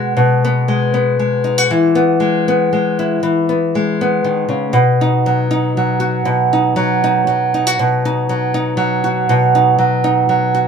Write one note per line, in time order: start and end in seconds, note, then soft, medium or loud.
0.00 0.14 B2 medium
0.00 0.68 G#3 soft
0.00 0.44 B3 soft
0.00 0.14 F#4 soft
0.17 1.66 B2 medium
0.44 0.93 B3 soft
0.68 1.19 G#3 soft
0.94 1.95 B3 soft
1.19 2.20 G#3 soft
1.44 1.58 D#4 soft
1.58 1.70 F#4 soft
1.71 3.19 E3 medium
1.95 2.48 B3 soft
2.20 2.71 G#3 soft
2.48 3.48 B3 soft
2.73 3.19 G#3 soft
2.99 3.20 E4 soft
3.23 4.23 E3 medium
3.49 3.99 B3 soft
3.75 4.72 G#3 soft
4.01 5.01 B3 soft
4.24 4.48 D#3 soft
4.49 4.74 C#3 soft
4.73 6.25 B2 medium
5.01 5.50 D#4 medium
5.26 5.77 F#3 medium
5.51 6.52 D#4 medium
5.77 6.76 F#3 medium
6.00 7.54 F#4 medium
6.25 7.79 B2 medium
6.53 7.03 D#4 soft
6.76 7.27 F#3 medium
7.04 7.54 D#4 medium
7.27 8.29 F#3 medium
7.54 7.67 D#4 medium
7.67 7.78 F#4 soft
7.79 9.29 B2 medium
8.05 8.54 D#4 medium
8.29 8.77 F#3 medium
8.54 9.55 D#4 medium
8.77 9.78 F#3 medium
9.04 10.54 F#4 medium
9.29 10.68 B2 medium
9.55 10.04 D#4 medium
9.79 10.29 F#3 medium
10.04 10.68 D#4 medium
10.29 10.68 F#3 medium
10.55 10.68 F#4 soft